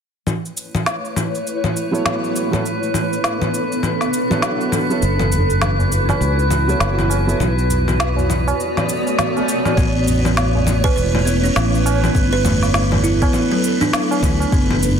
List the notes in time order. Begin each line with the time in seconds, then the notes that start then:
0.26 A3 E4 B4 C#5, low conga, shaker
0.45 shaker
0.57 shaker
0.75 low conga, shaker
0.86 snare, shaker
1.05 shaker
1.16 low conga, shaker
1.35 shaker
1.47 shaker
1.64 low conga, shaker
1.77 shaker
1.91 F#3 B3 E4 A4 C#5, shaker
2.06 snare, low conga, shaker
2.24 shaker
2.36 shaker
2.51 F#3 B3 E4 A4 C#5, low conga, shaker
2.65 B3 D4 A4, shaker
2.83 shaker
2.94 low conga, shaker
3.13 shaker
3.24 snare, shaker
3.42 low conga, shaker
3.54 shaker
3.72 shaker
3.83 low conga, shaker
4.01 snare, shaker
4.13 shaker
4.30 F#3 B3 E4 A4 C#5, low conga, shaker
4.42 snare, shaker
4.61 shaker
4.72 low conga, shaker
4.90 F#3 B3 E4 A4 C#5, shaker
5.02 F#1 E4 F#4, shaker
5.19 low conga, shaker
5.32 tabla ge, shaker
5.49 tabla tin, shaker
5.62 snare, low conga, shaker
5.79 tabla tin, tabla ge, shaker
5.92 shaker
6.09 tabla na, tabla tin, low conga, shaker
6.21 C#2, shaker
6.38 tabla tin, shaker
6.50 low conga, shaker
6.67 F#3 B3 E4 A4 C#5, shaker
6.80 F#1, snare, shaker
6.99 low conga, shaker
7.10 tabla na, shaker
7.27 F#3 B3 E4 A4 C#5, shaker
7.40 B1 B3 F#4 C#5 D5, low conga, shaker
7.58 shaker
7.70 tabla ge, shaker
7.88 tabla tin, low conga, shaker
8.00 snare, shaker
8.16 tabla tin, tabla ge, shaker
8.30 low conga, shaker
8.47 tabla na, tabla tin, shaker
8.58 swell, shaker
8.76 snare, tabla tin, low conga, shaker
8.89 shaker
9.06 tabla na, shaker
9.19 snare, low conga, shaker
9.37 tabla na, shaker
9.49 shaker
9.65 tabla na, low conga, shaker
9.77 A1 A3 B3 E4 B4 C#5, kick, low conga, shaker
10.07 tabla ge, shaker
10.25 tabla tin, low conga, shaker
10.37 snare, shaker
10.55 tabla tin, tabla ge
10.67 low conga, shaker
10.84 B4, kick, tabla na, tabla tin, shaker
10.96 E1 B4, shaker
11.14 tabla tin, low conga
11.25 B3, shaker
11.44 C#4, shaker
11.56 A1, snare, low conga, shaker
11.75 shaker
11.86 tabla na, shaker
12.04 low conga, shaker
12.15 G1 B3 D4 A4, kick, shaker
12.33 B4
12.45 A3, low conga, tabla ge, shaker
12.63 snare, tabla tin, shaker
12.74 snare, shaker
12.92 tabla tin, low conga, tabla ge
13.04 E4, shaker
13.22 B3, kick, tabla na, shaker
13.33 low conga, shaker
13.52 F#3, tabla tin
13.64 shaker
13.81 D4, tabla na, tabla tin, low conga, shaker
13.93 snare, shaker
14.11 tabla na, shaker
14.23 D2 A3, kick, low conga, shaker
14.40 tabla na, shaker
14.52 F#1 B3 E4 F#4, kick, shaker
14.71 low conga
14.82 tabla ge, shaker